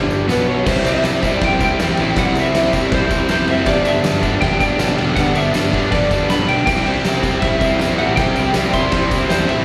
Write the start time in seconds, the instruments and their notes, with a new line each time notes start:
Already playing: picked electric bass G1, overdriven electric guitar G2 D3 G3
0.10 tambourine
0.28 picked electric bass B1, overdriven electric guitar B2 F#3 B3, electric slide guitar B4, snare, tambourine, crash
0.50 electric slide guitar C#5
0.65 picked electric bass C2, overdriven electric guitar C3 G3 C4 E4, electric slide guitar C5, kick, snare, crash, tambourine
0.84 picked electric bass C2, overdriven electric guitar G3 C4 E4, ride, tambourine
0.88 electric slide guitar E5
1.02 picked electric bass C2, overdriven electric guitar C3 G3 C4 E4, snare, ride, tambourine
1.21 picked electric bass C2, overdriven electric guitar C3 G3 C4 E4, kick, ride, tambourine
1.33 electric slide guitar D5
1.40 picked electric bass C2, overdriven electric guitar C3 G3 C4 E4, kick, snare, ride
1.45 electric slide guitar G5
1.59 picked electric bass C2, overdriven electric guitar G3 C4 E4, kick, ride, tambourine
1.64 electric slide guitar G5
1.79 picked electric bass E2, overdriven electric guitar C3 G3 C4 E4, snare, ride, tambourine
1.89 tambourine
1.97 picked electric bass A1, overdriven electric guitar G3 C4 E4, ride, tambourine
2.16 picked electric bass C2, overdriven electric guitar C3 G3 C4 E4, electric slide guitar F#5, kick, snare, ride, tambourine
2.34 picked electric bass C2, overdriven electric guitar C4 E4, ride, tambourine
2.39 overdriven electric guitar G3, electric slide guitar E5
2.46 tambourine
2.52 picked electric bass C2, overdriven electric guitar C3 G3 C4, snare, ride, tambourine
2.57 overdriven electric guitar E4
2.73 picked electric bass C2, overdriven electric guitar G3 C4 E4, kick, ride, tambourine
2.78 overdriven electric guitar C3
2.92 picked electric bass C2, overdriven electric guitar C3 G3 C4 E4, electric slide guitar C5, kick, snare, ride
3.10 picked electric bass C2, overdriven electric guitar G3 C4 E4, kick, ride, tambourine
3.28 picked electric bass E2, overdriven electric guitar C3 G3 C4 E4, electric slide guitar C5, snare, ride, tambourine
3.38 tambourine
3.47 picked electric bass F#1, overdriven electric guitar G3 C4 E4, electric slide guitar E5, ride, tambourine
3.66 picked electric bass G1, overdriven electric guitar G2 D3 G3 B3 D4, electric slide guitar D5, kick, snare, ride, tambourine
3.85 picked electric bass G1, overdriven electric guitar G3 B3 D4, electric slide guitar E5, ride, tambourine
3.94 tambourine
4.03 picked electric bass G1, overdriven electric guitar D3 G3 B3 D4, snare, ride, tambourine
4.22 picked electric bass G1, overdriven electric guitar G2 D3 G3 B3 D4, kick, ride, tambourine
4.41 picked electric bass G1, overdriven electric guitar D3 G3 B3 D4, electric slide guitar G5, kick, snare, ride
4.60 picked electric bass G1, overdriven electric guitar G3 B3 D4, electric slide guitar G5, kick, ride, tambourine
4.79 picked electric bass B1, overdriven electric guitar G2 D3 G3 B3 D4, snare, ride, tambourine
4.89 tambourine
4.97 picked electric bass E1, overdriven electric guitar G3 B3 D4, ride, tambourine
5.16 picked electric bass G1, overdriven electric guitar G2 D3 G3 B3 D4, electric slide guitar F#5, kick, snare, ride, tambourine
5.25 tambourine
5.34 picked electric bass G1, overdriven electric guitar G3 B3 D4, electric slide guitar E5, ride, tambourine
5.44 tambourine
5.53 picked electric bass G1, overdriven electric guitar D3 G3 B3 D4, snare, ride, tambourine
5.72 picked electric bass G1, overdriven electric guitar G2 D3 G3 B3 D4, kick, ride
5.82 tambourine
5.91 picked electric bass G1, overdriven electric guitar D3 G3 B3 D4, electric slide guitar D5, kick, snare, ride, tambourine
6.02 tambourine
6.11 picked electric bass G1, overdriven electric guitar G3 B3 D4, kick, ride, tambourine
6.29 picked electric bass B1, overdriven electric guitar G2 D3 G3 B3 D4, electric slide guitar B5, snare, ride, tambourine
6.48 picked electric bass B1, overdriven electric guitar G3 B3 D4, electric slide guitar G5, ride
6.66 picked electric bass C2, overdriven electric guitar C3 G3 C4 E4, electric slide guitar G5, kick, snare, crash, tambourine
6.85 picked electric bass C2, overdriven electric guitar C4 E4, electric slide guitar G5, ride
6.89 overdriven electric guitar G3
6.96 tambourine
7.04 picked electric bass C2, overdriven electric guitar C3 G3 C4 E4, snare, ride, tambourine
7.23 picked electric bass C2, overdriven electric guitar G3 C4 E4, kick, ride, tambourine
7.27 overdriven electric guitar C3
7.40 picked electric bass C2, overdriven electric guitar C3 G3, electric slide guitar E5, kick, snare, ride
7.44 overdriven electric guitar C4 E4
7.59 picked electric bass C2, overdriven electric guitar E4, electric slide guitar E5, kick, ride, tambourine
7.63 overdriven electric guitar G3 C4
7.79 picked electric bass E2, overdriven electric guitar C3 G3 C4 E4, snare, ride, tambourine
7.90 tambourine
7.98 picked electric bass A1, overdriven electric guitar G3 C4 E4, electric slide guitar F#5, ride, tambourine
8.16 picked electric bass C2, overdriven electric guitar C3 G3 C4, electric slide guitar G5, kick, snare, ride, tambourine
8.20 overdriven electric guitar E4
8.35 picked electric bass C2, overdriven electric guitar G3 C4 E4, ride, tambourine
8.46 tambourine
8.54 picked electric bass C2, overdriven electric guitar C3 G3 C4 E4, snare, ride, tambourine
8.73 picked electric bass C2, overdriven electric guitar C3 G3 C4 E4, electric slide guitar C6, kick, ride, tambourine
8.92 picked electric bass C2, overdriven electric guitar C3 G3 C4, kick, snare, ride
8.96 overdriven electric guitar E4
9.11 picked electric bass C2, overdriven electric guitar G3 C4 E4, kick, ride, tambourine
9.29 picked electric bass E2, overdriven electric guitar C3 G3 C4 E4, electric slide guitar C5, snare, ride, tambourine
9.41 tambourine
9.47 picked electric bass A1, overdriven electric guitar G3 C4 E4, electric slide guitar E5, ride, tambourine